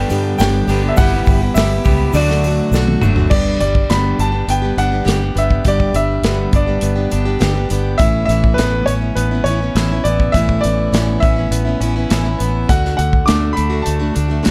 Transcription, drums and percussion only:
0.10 open hi-hat, shaker
0.39 snare, open hi-hat, shaker
0.68 open hi-hat, shaker
0.97 kick, open hi-hat, shaker
1.26 kick, open hi-hat, shaker
1.56 snare, open hi-hat, shaker
1.84 kick, open hi-hat, shaker
2.13 open hi-hat, shaker
2.30 snare
2.43 open hi-hat, shaker
2.73 snare, shaker
2.88 high tom
3.02 mid tom, shaker
3.16 floor tom
3.31 kick, crash
3.60 closed hi-hat
3.75 kick
3.90 snare, closed hi-hat
4.19 closed hi-hat
4.49 closed hi-hat
4.78 closed hi-hat
5.08 snare, closed hi-hat
5.37 closed hi-hat
5.51 kick
5.65 kick, closed hi-hat
5.80 kick
5.94 closed hi-hat
6.24 snare, closed hi-hat
6.53 kick, closed hi-hat
6.81 closed hi-hat
7.12 closed hi-hat
7.41 snare, closed hi-hat
7.70 closed hi-hat
7.99 kick, closed hi-hat
8.29 closed hi-hat
8.44 kick
8.58 snare, closed hi-hat
8.88 closed hi-hat
9.17 closed hi-hat
9.46 closed hi-hat
9.76 snare, closed hi-hat
10.05 closed hi-hat
10.20 kick
10.34 kick, closed hi-hat
10.49 kick
10.64 closed hi-hat
10.94 snare, closed hi-hat
11.23 kick, closed hi-hat
11.52 closed hi-hat
11.81 closed hi-hat
12.10 snare, closed hi-hat
12.40 closed hi-hat
12.69 kick, closed hi-hat
12.85 snare
12.99 closed hi-hat
13.13 kick
13.28 snare, closed hi-hat
13.57 closed hi-hat
13.86 closed hi-hat
14.16 closed hi-hat
14.45 snare, closed hi-hat

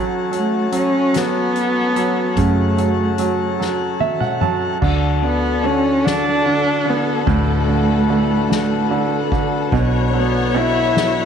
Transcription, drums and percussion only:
0.33 closed hi-hat
0.72 closed hi-hat
1.14 snare, closed hi-hat
1.56 closed hi-hat
1.96 closed hi-hat
2.37 kick, closed hi-hat
2.78 closed hi-hat
3.18 closed hi-hat
3.61 snare
4.00 high tom
4.21 mid tom
4.41 mid tom
4.82 kick, crash
5.23 ride
5.63 ride
6.05 snare, ride
6.46 ride
6.87 ride
7.27 kick, ride
7.68 ride
8.08 ride
8.50 snare, ride
8.91 ride
9.32 kick, ride
9.72 kick, ride
10.13 ride
10.97 snare

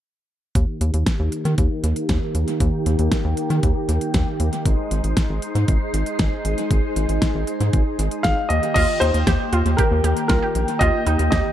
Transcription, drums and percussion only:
0.55 kick, closed hi-hat
0.81 closed hi-hat
0.94 closed hi-hat
1.06 kick, snare, closed hi-hat
1.32 closed hi-hat
1.45 closed hi-hat
1.58 kick, closed hi-hat
1.84 closed hi-hat
1.96 closed hi-hat
2.09 kick, snare, closed hi-hat
2.35 closed hi-hat
2.48 closed hi-hat
2.60 kick, closed hi-hat
2.86 closed hi-hat
2.99 closed hi-hat
3.12 kick, snare, closed hi-hat
3.37 closed hi-hat
3.50 closed hi-hat
3.63 kick, closed hi-hat
3.89 closed hi-hat
4.01 closed hi-hat
4.14 kick, snare, closed hi-hat
4.40 closed hi-hat
4.53 closed hi-hat
4.66 kick, closed hi-hat
4.91 closed hi-hat
5.04 closed hi-hat
5.17 kick, snare, closed hi-hat
5.42 closed hi-hat
5.55 closed hi-hat
5.68 kick, closed hi-hat
5.94 closed hi-hat
6.06 closed hi-hat
6.19 kick, snare, closed hi-hat
6.45 closed hi-hat
6.58 closed hi-hat
6.71 kick, closed hi-hat
6.96 closed hi-hat
7.09 closed hi-hat
7.22 kick, snare, closed hi-hat
7.47 closed hi-hat
7.61 closed hi-hat
7.73 kick, closed hi-hat
7.99 closed hi-hat
8.11 closed hi-hat
8.24 kick, snare, closed hi-hat
8.50 closed hi-hat
8.63 closed hi-hat
8.76 kick, closed hi-hat, crash
9.02 closed hi-hat
9.14 closed hi-hat
9.27 kick, snare, closed hi-hat
9.53 closed hi-hat
9.66 closed hi-hat
9.78 kick, closed hi-hat
10.04 closed hi-hat
10.17 closed hi-hat
10.29 kick, snare, closed hi-hat
10.55 closed hi-hat
10.68 closed hi-hat
10.81 kick, closed hi-hat
11.07 closed hi-hat
11.19 closed hi-hat
11.32 kick, snare, closed hi-hat

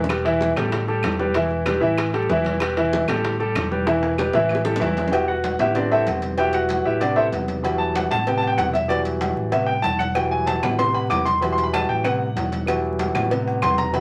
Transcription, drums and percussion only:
0.04 low bongo
0.09 high bongo, high conga, high timbale, claves
0.26 high bongo, high conga, high timbale
0.41 high bongo, high conga, low timbale
0.56 high bongo, high conga, low conga, high timbale, claves
0.72 high bongo, high conga, low conga, high timbale
0.88 high bongo, high conga
1.03 high bongo, low bongo, high conga, high timbale, low timbale, claves
1.19 high conga
1.34 high bongo, high timbale
1.51 high bongo, high conga
1.66 high bongo, high conga, high timbale, low timbale, claves
1.82 high bongo, high conga
1.97 high bongo, high conga, high timbale, claves
2.13 high bongo, high conga, high timbale
2.29 high bongo, low bongo, high conga, low timbale
2.45 high conga, high timbale
2.60 high bongo, high conga, high timbale, claves
2.77 high bongo, high conga, high timbale
2.93 high bongo, high conga, low timbale
3.08 high bongo, high conga, low conga, high timbale, claves
3.25 high bongo, high conga, low conga, high timbale
3.40 high bongo, high conga
3.55 high bongo, low bongo, high conga, high timbale, low timbale, claves
3.72 high conga
3.87 high bongo, high timbale
4.03 high bongo, high timbale
4.18 high bongo, high conga, claves
4.33 high bongo, high conga, low timbale
4.49 high conga, low timbale, claves
4.55 high bongo
4.65 high bongo, low timbale
4.76 low bongo
4.81 high conga, low timbale
4.97 low bongo, high conga, low timbale
5.08 low bongo
5.13 cowbell, low agogo
5.28 high conga
5.44 cowbell, high conga, low timbale, low agogo
5.59 high conga, low conga, low agogo
5.75 cowbell, high conga, low conga
5.92 high conga, low agogo
6.07 cowbell, high conga, low timbale, low agogo
6.22 cowbell, high conga
6.38 cowbell, high conga, low agogo
6.53 cowbell, high conga
6.69 cowbell, high conga, low timbale, low agogo
6.85 high conga
7.01 cowbell, high conga, low agogo
7.17 high conga
7.32 cowbell, high conga, low timbale, low agogo
7.48 cowbell, high conga
7.64 cowbell, high conga, low agogo
7.80 high conga
7.95 cowbell, high conga, low timbale, low agogo
8.11 high conga, low conga, low agogo
8.27 cowbell, high conga
8.42 high conga, low agogo
8.58 cowbell, high conga, low timbale, low agogo
8.74 cowbell, high conga
8.89 cowbell, high conga, low agogo
9.05 cowbell, high conga
9.21 cowbell, high conga, low timbale, low agogo
9.36 high conga
9.52 cowbell, high conga, low agogo
9.69 high conga
9.84 cowbell, high conga, low timbale, low agogo
9.99 cowbell, high conga
10.15 cowbell, low agogo, claves
10.32 high conga
10.47 cowbell, high conga, low timbale, low agogo
10.63 high conga, low conga, low agogo, claves
10.79 cowbell, high conga, low conga
10.95 high conga, low agogo
11.10 cowbell, high conga, low timbale, low agogo, claves
11.26 cowbell, high conga
11.42 cowbell, high conga, low agogo
11.58 cowbell, high conga
11.74 cowbell, high conga, low timbale, low agogo, claves
11.90 high conga
12.04 cowbell, high conga, low agogo, claves
12.21 high conga
12.37 cowbell, high conga, low timbale, low agogo
12.52 cowbell, high conga
12.67 cowbell, low agogo, claves
12.85 high conga
12.99 cowbell, high conga, low timbale, low agogo
13.15 high conga, low conga, low agogo, claves
13.31 cowbell, high conga, low conga
13.47 high conga, low agogo
13.62 cowbell, high conga, low timbale, low agogo, claves
13.78 cowbell, high conga
13.94 cowbell, high conga, low agogo

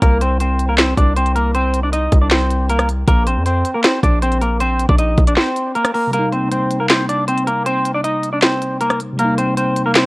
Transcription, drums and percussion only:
0.02 kick, closed hi-hat
0.21 closed hi-hat
0.40 closed hi-hat
0.59 closed hi-hat
0.78 snare, clap, closed hi-hat
0.97 kick, closed hi-hat
1.17 closed hi-hat
1.26 closed hi-hat
1.36 closed hi-hat
1.55 closed hi-hat
1.74 closed hi-hat
1.93 closed hi-hat
2.12 kick, closed hi-hat
2.30 snare, clap, closed hi-hat
2.51 closed hi-hat
2.69 closed hi-hat
2.79 cross-stick, closed hi-hat
2.89 closed hi-hat
3.08 kick, closed hi-hat
3.27 closed hi-hat
3.46 closed hi-hat
3.65 closed hi-hat
3.83 snare, clap, closed hi-hat
4.03 kick, closed hi-hat
4.22 closed hi-hat
4.32 closed hi-hat
4.42 closed hi-hat
4.60 closed hi-hat
4.80 closed hi-hat
4.89 kick
4.99 closed hi-hat
5.18 kick, closed hi-hat
5.27 closed hi-hat
5.36 snare, clap, closed hi-hat
5.56 closed hi-hat
5.75 closed hi-hat
5.85 cross-stick, closed hi-hat
5.95 open hi-hat
6.13 closed hi-hat
6.33 closed hi-hat
6.52 closed hi-hat
6.71 closed hi-hat
6.89 snare, clap, closed hi-hat
7.09 closed hi-hat
7.28 closed hi-hat
7.38 closed hi-hat
7.47 closed hi-hat
7.66 closed hi-hat
7.85 closed hi-hat
8.04 closed hi-hat
8.23 closed hi-hat
8.42 snare, clap, closed hi-hat
8.62 closed hi-hat
8.81 closed hi-hat
8.90 cross-stick, closed hi-hat
9.00 closed hi-hat
9.19 closed hi-hat
9.38 closed hi-hat
9.57 closed hi-hat
9.76 closed hi-hat
9.95 snare, clap, closed hi-hat

